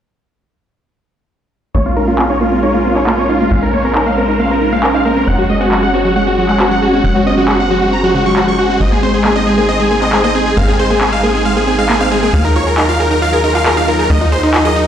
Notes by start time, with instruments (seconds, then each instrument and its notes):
1.75 analog synth bass A#1, synth pluck A#3, supersaw synth C#5, closed hi-hat
1.86 synth pluck C4, supersaw synth F4, closed hi-hat
1.97 synth pluck D#4, supersaw synth A#4, closed hi-hat
2.08 synth pluck A#3, supersaw synth F4, closed hi-hat
2.19 synth pluck C4, supersaw synth F4, clap, closed hi-hat
2.30 synth pluck D#4, supersaw synth C#5
2.41 synth pluck A#3, supersaw synth F4, closed hi-hat
2.52 synth pluck C4, supersaw synth F4, closed hi-hat
2.63 synth pluck D#4, supersaw synth C#5, closed hi-hat
2.74 synth pluck A#3, supersaw synth F4
2.85 synth pluck C4, supersaw synth F4, closed hi-hat
2.96 synth pluck D#4, supersaw synth C#5, clap, closed hi-hat
3.07 synth pluck A#3, supersaw synth F4, clap, closed hi-hat
3.18 synth pluck C4, supersaw synth C#5
3.29 synth pluck D#4, supersaw synth F4, closed hi-hat
3.40 synth pluck A#3, supersaw synth F4, closed hi-hat
3.51 analog synth bass A#1, synth pluck C4, supersaw synth F5, closed hi-hat
3.62 synth pluck D#4, supersaw synth A#4, closed hi-hat
3.73 synth pluck A#3, supersaw synth C#5, closed hi-hat
3.84 synth pluck C4, supersaw synth A#4, closed hi-hat
3.95 synth pluck D#4, supersaw synth A#4, clap, closed hi-hat
4.06 synth pluck A#3, supersaw synth F5
4.17 synth pluck C4, supersaw synth A#4, closed hi-hat
4.28 synth pluck D#4, supersaw synth A#4, closed hi-hat
4.39 synth pluck A#3, supersaw synth F5, closed hi-hat
4.50 synth pluck C4, supersaw synth A#4
4.61 synth pluck D#4, supersaw synth A#4, closed hi-hat
4.72 synth pluck A#3, supersaw synth F5, closed hi-hat
4.83 synth pluck C4, supersaw synth A#4, clap, closed hi-hat
4.94 synth pluck D#4, supersaw synth F5
5.05 synth pluck A#3, supersaw synth A#4, closed hi-hat
5.16 synth pluck C4, supersaw synth A#4, closed hi-hat
5.27 analog synth bass F#1, synth pluck C4, supersaw synth F#5, closed hi-hat
5.39 synth pluck F#3, supersaw synth F#4
5.50 synth pluck G#3, supersaw synth D#5, closed hi-hat
5.61 synth pluck C4, supersaw synth F#4, closed hi-hat
5.72 synth pluck F#3, supersaw synth F#4, clap, closed hi-hat
5.83 synth pluck G#3, supersaw synth F#5
5.94 synth pluck C4, supersaw synth F#4, closed hi-hat
6.05 synth pluck F#3, supersaw synth F#4, closed hi-hat
6.16 synth pluck G#3, supersaw synth F#5, closed hi-hat
6.27 synth pluck C4, supersaw synth F#4
6.38 synth pluck F#3, supersaw synth F#4, closed hi-hat
6.49 synth pluck G#3, supersaw synth F#5, clap
6.60 synth pluck C4, supersaw synth F#4, clap, closed hi-hat
6.71 synth pluck F#3, supersaw synth F#5
6.82 synth pluck G#3, supersaw synth F#4, closed hi-hat
6.93 synth pluck C4, supersaw synth F#4, closed hi-hat
7.04 analog synth bass F#1, synth pluck F#3, supersaw synth F#5, closed hi-hat
7.15 synth pluck G#3, supersaw synth F#4
7.26 synth pluck C4, supersaw synth D#5, closed hi-hat
7.37 synth pluck F#3, supersaw synth F#4, closed hi-hat
7.48 synth pluck G#3, supersaw synth F#4, clap, closed hi-hat
7.59 synth pluck C4, supersaw synth F#5
7.70 synth pluck F#3, supersaw synth F#4, closed hi-hat
7.81 synth pluck G#3, supersaw synth F#4, closed hi-hat
7.92 synth pluck C4, supersaw synth A#5, closed hi-hat
8.03 synth pluck F#3, supersaw synth F#4
8.14 synth pluck C#3, supersaw synth F#4, closed hi-hat
8.25 synth pluck F#3, supersaw synth C#6, closed hi-hat
8.36 synth pluck F#3, supersaw synth F#4, clap, closed hi-hat
8.48 synth pluck F#3, supersaw synth C#6
8.59 synth pluck F#4, supersaw synth F#4, closed hi-hat
8.70 synth pluck G#3, supersaw synth F#4, closed hi-hat
8.80 analog synth bass G#1, synth pluck G#3, supersaw synth D#5, closed hi-hat
8.92 synth pluck A#3, supersaw synth G#4, closed hi-hat
9.03 synth pluck C4, supersaw synth C5, closed hi-hat
9.14 synth pluck G#3, supersaw synth G#4, closed hi-hat
9.25 synth pluck A#3, supersaw synth G#4, clap, closed hi-hat
9.36 synth pluck C4, supersaw synth D#5
9.47 synth pluck G#3, supersaw synth G#4, closed hi-hat
9.58 synth pluck A#3, supersaw synth G#4, closed hi-hat
9.69 synth pluck C4, supersaw synth D#5, closed hi-hat
9.80 synth pluck G#3, supersaw synth G#4
9.91 synth pluck A#3, supersaw synth G#4, closed hi-hat
10.02 synth pluck C4, supersaw synth D#5, clap, closed hi-hat
10.13 synth pluck G#3, supersaw synth G#4, clap, closed hi-hat
10.24 synth pluck A#3, supersaw synth D#5
10.35 synth pluck C4, supersaw synth G#4, closed hi-hat
10.46 synth pluck G#3, supersaw synth G#4, closed hi-hat
10.57 analog synth bass G#1, synth pluck A#3, supersaw synth F5, closed hi-hat
10.68 synth pluck C4, supersaw synth G#4, closed hi-hat
10.79 synth pluck G#3, supersaw synth C5, closed hi-hat
10.90 synth pluck A#3, supersaw synth G#4, closed hi-hat
11.01 synth pluck C4, supersaw synth G#4, clap, closed hi-hat
11.12 synth pluck G#3, supersaw synth F5
11.23 synth pluck A#3, supersaw synth G#4, closed hi-hat
11.34 synth pluck C4, supersaw synth G#4, closed hi-hat
11.45 synth pluck G#3, supersaw synth F5, closed hi-hat
11.56 synth pluck A#3, supersaw synth G#4
11.67 synth pluck C4, supersaw synth G#4, closed hi-hat
11.78 synth pluck G#3, supersaw synth F5, closed hi-hat
11.89 synth pluck A#3, supersaw synth G#4, clap, closed hi-hat
12.01 synth pluck C4, supersaw synth F5
12.11 synth pluck G#3, supersaw synth G#4, closed hi-hat
12.23 synth pluck A#3, supersaw synth G#4, closed hi-hat
12.34 analog synth bass D#2, synth pluck G#4, supersaw synth F5, closed hi-hat
12.45 synth pluck D#4, supersaw synth A#4, closed hi-hat
12.56 synth pluck F4, supersaw synth C#5, closed hi-hat
12.67 synth pluck G#4, supersaw synth A#4, closed hi-hat
12.78 synth pluck D#4, supersaw synth A#4, clap, closed hi-hat
12.89 synth pluck F4, supersaw synth F5
13.00 synth pluck G#4, supersaw synth A#4, closed hi-hat
13.11 synth pluck D#4, supersaw synth A#4, closed hi-hat
13.22 synth pluck F4, supersaw synth F5, closed hi-hat
13.33 synth pluck G#4, supersaw synth A#4
13.44 synth pluck D#4, supersaw synth A#4, closed hi-hat
13.55 synth pluck F4, supersaw synth F5, clap, closed hi-hat
13.66 synth pluck G#4, supersaw synth A#4, clap, closed hi-hat
13.77 synth pluck D#4, supersaw synth F5
13.88 synth pluck F4, supersaw synth A#4, closed hi-hat
13.99 synth pluck G#4, supersaw synth A#4, closed hi-hat
14.10 analog synth bass D#2, synth pluck D#4, supersaw synth D#5, closed hi-hat
14.21 supersaw synth D#4, synth pluck F4, closed hi-hat
14.32 synth pluck G#4, supersaw synth C5, closed hi-hat
14.43 synth pluck D#4, supersaw synth D#4, closed hi-hat
14.54 supersaw synth D#4, synth pluck F4, clap, closed hi-hat
14.65 synth pluck G#4, supersaw synth D#5, clap, closed hi-hat
14.76 supersaw synth D#4, synth pluck D#4, closed hi-hat